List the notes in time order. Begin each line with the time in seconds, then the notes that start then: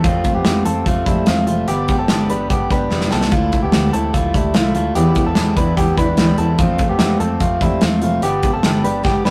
0.04 F2 C3 F3 A3 C4 F4, kick, closed hi-hat
0.24 F3 A3 C4 F4, kick, closed hi-hat
0.35 F2 B3 G4
0.44 F2 C3 F3 A3 C4 F4, snare, closed hi-hat
0.65 F2 F3 A3 C4 F4 A4, closed hi-hat
0.86 F2 F3 A3 C4 F4, kick, closed hi-hat
1.05 F2 F3 G3 A3 C4 E4 F4, kick, closed hi-hat
1.26 E2 F2 C3 F3 A3 C4 F4, snare, closed hi-hat
1.47 F1 F3 A3 C4 F4, closed hi-hat
1.68 G1 G2 D3 G3 B3 D4 G4, closed hi-hat
1.88 G3 B3 D4 G4, kick, closed hi-hat
1.99 G1 C4 A4
2.08 G1 G2 D3 G3 B3 D4 G4, snare, closed hi-hat
2.29 G1 G3 B3 D4 G4 B4, closed hi-hat
2.50 G1 G3 B3 D4 G4, kick, closed hi-hat
2.70 G1 G3 B3 D4 G4 B4, kick, closed hi-hat
2.90 F1 G2 D3 G3 B3 D4 G4, snare
3.01 snare
3.11 C2 G3 B3 C4 D4 G4 A4, snare
3.21 snare
3.31 D2 D3 F3 A3 D4 E4 F4, kick, closed hi-hat
3.52 A3 D4 E4, kick, closed hi-hat
3.63 D2 B3 G4
3.72 D2 D3 F3 A3 D4 E4, snare, closed hi-hat
3.93 D2 A3 C4 D4 E4 A4, closed hi-hat
4.13 D2 F3 A3 D4 E4 F4, kick, closed hi-hat
4.34 D2 G3 A3 D4 E4, kick, closed hi-hat
4.54 C2 D3 F3 A3 D4 E4 F4, snare, closed hi-hat
4.74 D2 A3 D4 E4 F4, closed hi-hat
4.95 E2 B2 E3 G3 B3 E4 G4, closed hi-hat
5.15 E3 G3 B3 E4, kick, closed hi-hat
5.26 E2 C4 A4
5.35 E2 B2 E3 G3 B3 E4, snare, closed hi-hat
5.57 E2 E3 G3 B3 D4 E4 B4, kick, closed hi-hat
5.77 E2 E3 G3 B3 E4 G4, kick, closed hi-hat
5.97 E2 E3 G3 B3 D4 E4 B4, kick, closed hi-hat
6.17 D2 E2 B2 E3 G3 B3 E4, snare, closed hi-hat
6.38 E2 E3 G3 B3 C4 E4 A4, closed hi-hat
6.58 F2 C3 F3 A3 C4 F4, kick, closed hi-hat
6.78 F3 A3 C4 F4, kick, closed hi-hat
6.89 F2 B3 G4
6.99 F2 C3 F3 A3 C4 F4, snare, closed hi-hat
7.20 F2 F3 A3 C4 F4 A4, closed hi-hat
7.40 F2 F3 A3 C4 F4, kick, closed hi-hat
7.61 F2 F3 G3 A3 C4 E4 F4, kick, closed hi-hat
7.81 E2 F2 C3 F3 A3 C4 F4, snare, closed hi-hat
8.02 F1 F3 A3 C4 F4, closed hi-hat
8.22 G1 G2 D3 G3 B3 D4 G4, closed hi-hat
8.43 G3 B3 D4 G4, kick, closed hi-hat
8.53 G1 C4 A4
8.63 G1 G2 D3 G3 B3 D4 G4, snare, closed hi-hat
8.84 G1 G3 B3 D4 G4 B4, closed hi-hat
9.04 G1 G3 B3 D4 G4, kick, snare
9.24 G1 G3 B3 D4 G4 B4, snare